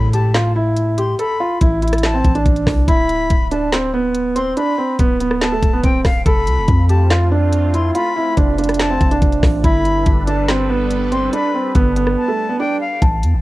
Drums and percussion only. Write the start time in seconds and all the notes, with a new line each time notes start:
0.13 closed hi-hat
0.34 snare, clap, closed hi-hat
0.76 closed hi-hat
0.98 closed hi-hat
1.19 closed hi-hat
1.61 kick, closed hi-hat
1.82 closed hi-hat
1.88 closed hi-hat
1.93 cross-stick, closed hi-hat
1.98 closed hi-hat
2.03 snare, clap, closed hi-hat
2.25 kick, closed hi-hat
2.35 closed hi-hat
2.46 kick, closed hi-hat
2.56 closed hi-hat
2.67 kick, cross-stick, snare, open hi-hat
2.88 kick, closed hi-hat
3.09 closed hi-hat
3.30 kick, closed hi-hat
3.51 closed hi-hat
3.72 snare, clap, closed hi-hat
4.15 closed hi-hat
4.36 closed hi-hat
4.57 closed hi-hat
4.99 kick, closed hi-hat
5.20 closed hi-hat
5.31 cross-stick
5.41 snare, clap, closed hi-hat
5.63 kick, closed hi-hat
5.84 kick, closed hi-hat
6.05 kick, cross-stick, snare, open hi-hat
6.26 kick, closed hi-hat
6.47 closed hi-hat
6.68 kick, closed hi-hat
6.89 closed hi-hat
7.10 snare, clap, closed hi-hat
7.53 closed hi-hat
7.74 closed hi-hat
7.95 closed hi-hat
8.37 kick, closed hi-hat
8.58 closed hi-hat
8.64 closed hi-hat
8.69 cross-stick, closed hi-hat
8.74 closed hi-hat
8.79 snare, clap, closed hi-hat
9.01 kick, closed hi-hat
9.11 closed hi-hat
9.22 kick, closed hi-hat
9.32 closed hi-hat
9.43 kick, cross-stick, snare, open hi-hat
9.64 kick, closed hi-hat
9.85 closed hi-hat
10.06 kick, closed hi-hat
10.27 closed hi-hat
10.48 snare, clap, closed hi-hat
10.91 closed hi-hat
11.12 closed hi-hat
11.33 closed hi-hat
11.75 kick, closed hi-hat
11.96 closed hi-hat
12.07 cross-stick
13.02 kick, closed hi-hat
13.23 closed hi-hat